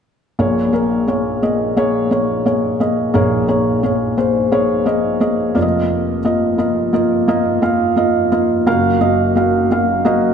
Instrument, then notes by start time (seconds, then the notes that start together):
felt piano
0.39 A#1 A#2 A#3 G#4 C#5
0.73 A#3 G#4 A#4
1.08 A#3 G#4 C#5
1.42 A#3 G#4 D#5
1.77 A#3 G#4 C#5
2.11 A#3 G#4 C#5
2.46 A#3 G#4 C#5
2.80 A#3 G#4 D#5
3.14 A#1 A#2 A#3 G#4 C#5
3.48 A#3 G#4 C#5
3.83 A#3 G#4 C#5
4.17 A#3 G#4 C5
4.52 A#3 G#4 C#5
4.86 A#3 G#4 D#5
5.21 A#3 G#4 D#5
5.55 F1 F2 A#3 F4 D5
5.62 D#5
6.25 A#3 F4 D#5
6.58 A#3 F4 D#5
6.93 A#3 F4 D#5
7.28 A#3 F4 D#5
7.62 A#3 F4 F5
7.96 A#3 F4 D#5
8.32 A#3 F4 D#5
8.66 F#1 F#2 A#3 F#4 F5
9.00 A#3 F#4 D#5
9.36 A#3 F#4 F5
9.71 A#3 F#4 F5
10.05 A#3 F#4 D#5